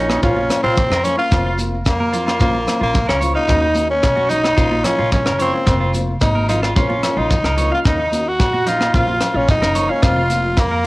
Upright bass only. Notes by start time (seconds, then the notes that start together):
Already playing: A#1
0.23 A#1
0.64 A#1
0.90 F2
1.32 F1
1.86 F2
2.41 A#1
2.81 A#1
3.09 C#2
3.49 D#2
4.03 B1
4.57 A#1
4.99 A#1
5.26 F#1
5.66 F1
6.21 G#1
6.76 A#1
7.17 A#1
7.44 C#2
7.85 D#2
8.39 A#1
8.94 A#1
9.34 A#1
9.62 F#1
10.03 F1
10.58 F2